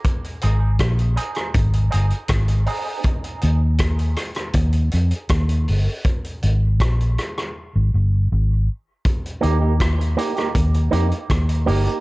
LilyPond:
<<
  \new Staff \with { instrumentName = "Clean electric guitar" } { \time 4/4 \key ees \major \tempo 4 = 80 r8 <c' ees' aes'>16 <c' ees' aes'>16 r8 <c' ees' aes'>16 <c' ees' aes'>16 r8 <c' ees' aes'>16 r8. <c' ees' aes'>16 <c' ees' aes'>16 | r1 | r1 | r8 <bes ees' g'>16 <bes ees' g'>16 r8 <bes ees' g'>16 <bes ees' g'>16 r8 <bes ees' g'>16 r8. <bes ees' g'>16 <bes ees' g'>16 | }
  \new Staff \with { instrumentName = "Fingered electric bass" } { \clef bass \time 4/4 \key ees \major r8 aes,,8 bes,,8 r8 aes,,8 g,,16 r16 aes,,8 r8 | r8 ees,4 r8 ees,8 f,16 r16 ees,8 g,,16 r16 | r8 aes,,8 bes,,8 r8. aes,,16 g,,8 aes,,8 r8 | r8 ees,4 r8 ees,8 f,16 r16 ees,8 g,,16 r16 | }
  \new DrumStaff \with { instrumentName = "Drums" } \drummode { \time 4/4 <hh bd>16 hh16 hh8 <hh bd ss>16 hh16 hh16 <hh ss>16 <hh bd>16 hh16 hh16 hh16 <hh bd ss>16 hh16 hho8 | <hh bd>16 hh16 hh8 <hh bd ss>16 hh16 <hh ss>16 <hh ss>16 <hh bd>16 hh16 hh16 hh16 <hh bd ss>16 hh16 hho8 | <hh bd>16 hh16 hh8 <hh bd ss>16 hh16 <hh ss>16 ss16 r4 r4 | <hh bd>16 hh16 hh8 <hh bd ss>16 hh16 hh16 <hh ss>16 <hh bd>16 hh16 hh16 hh16 <hh bd ss>16 hh16 hho16 hh16 | }
>>